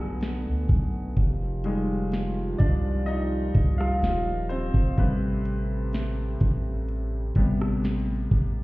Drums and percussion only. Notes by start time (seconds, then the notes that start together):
0.21 snare, closed hi-hat
0.69 kick, closed hi-hat
1.17 kick, closed hi-hat
1.64 closed hi-hat
2.12 snare, closed hi-hat
2.59 kick, closed hi-hat
3.08 closed hi-hat
3.55 kick, closed hi-hat
3.81 cross-stick
4.02 snare, closed hi-hat
4.50 closed hi-hat
4.74 kick
4.98 kick, closed hi-hat
5.45 closed hi-hat
5.93 snare, closed hi-hat
6.40 kick, closed hi-hat
6.88 closed hi-hat
7.35 kick, closed hi-hat
7.61 cross-stick
7.84 snare, closed hi-hat
8.00 closed hi-hat
8.16 closed hi-hat
8.31 kick, closed hi-hat